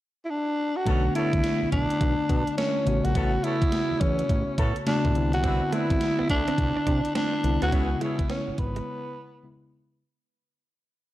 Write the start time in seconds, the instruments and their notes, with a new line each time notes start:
0.25 tenor saxophone E4
0.30 tenor saxophone D4
0.76 tenor saxophone F#4
0.85 analog synth bass B1, tine electric piano D3 A3 B3 D4, horn section B3 C#4 D4 A4, kick, closed hi-hat
1.15 horn section B3 C#4 D4 A4, tenor saxophone E4, closed hi-hat
1.33 analog synth bass D2, kick, closed hi-hat
1.44 snare, closed hi-hat
1.62 analog synth bass B1
1.72 analog synth bass B1, tenor saxophone D4, kick, closed hi-hat
1.90 closed hi-hat
2.01 analog synth bass B1, kick, closed hi-hat
2.29 analog synth bass B2, kick, closed hi-hat
2.47 closed hi-hat
2.58 tenor saxophone C#4, snare, closed hi-hat
2.85 analog synth bass A1, tine electric piano C#3 A3 B3 F#4, closed hi-hat
3.05 analog synth bass A#1, tenor saxophone F#4, closed hi-hat
3.15 analog synth bass A1, horn section B3 C#4 F#4 A4, kick, closed hi-hat
3.44 horn section B3 C#4 F#4 A4, tenor saxophone E4, closed hi-hat
3.62 analog synth bass E2, kick, closed hi-hat
3.72 snare, closed hi-hat
3.91 analog synth bass E2
4.01 analog synth bass E2, tenor saxophone C#4, kick, closed hi-hat
4.19 closed hi-hat
4.29 analog synth bass A1, kick, closed hi-hat
4.58 analog synth bass A2, horn section B3 C#4 F#4 A4, kick, closed hi-hat
4.76 closed hi-hat
4.86 tine electric piano C#3 A3 B3 F#4, tenor saxophone D4, snare, closed hi-hat
5.05 analog synth bass A2, kick
5.14 analog synth bass C2, tine electric piano D3 B3 C4 E4, closed hi-hat
5.33 tenor saxophone F#4, closed hi-hat
5.43 horn section C4 D4 E4 B4, clean electric guitar C4, kick, closed hi-hat
5.62 muted clean electric guitar stroke
5.72 clean electric guitar A3, horn section C4 D4 E4 B4, tenor saxophone E4, closed hi-hat
5.90 analog synth bass C2, kick, closed hi-hat
6.01 snare, closed hi-hat
6.19 analog synth bass D2, clean electric guitar B3
6.29 analog synth bass D2, tenor saxophone D4, muted clean electric guitar stroke, kick, closed hi-hat
6.48 clean electric guitar C4, closed hi-hat
6.58 analog synth bass C2, muted clean electric guitar stroke, kick, closed hi-hat
6.77 clean electric guitar D4
6.87 analog synth bass C3, clean electric guitar D4, kick, closed hi-hat
7.05 closed hi-hat
7.15 clean electric guitar C4, tenor saxophone D4, snare, closed hi-hat
7.33 muted clean electric guitar stroke
7.43 analog synth bass C2, tine electric piano D3 B3 C4 E4, closed hi-hat
7.62 analog synth bass D2, clean electric guitar B3, tenor saxophone F#4, closed hi-hat
7.71 analog synth bass C#2, tine electric piano C#3 G#3 B3 E4, horn section B3 C#4 E4 G#4, clean electric guitar C#4, kick, closed hi-hat
8.01 clean electric guitar G#3, horn section B3 C#4 E4 G#4, tenor saxophone E4, closed hi-hat
8.19 analog synth bass G#1, muted clean electric guitar stroke, kick, closed hi-hat
8.30 clean electric guitar B3, tenor saxophone C#4, snare, closed hi-hat
8.48 analog synth bass G#1, muted clean electric guitar stroke
8.58 analog synth bass G#1, tenor saxophone B3, kick, closed hi-hat
8.76 clean electric guitar G#3, closed hi-hat
9.43 tine electric piano C#3 G#3 B3 E4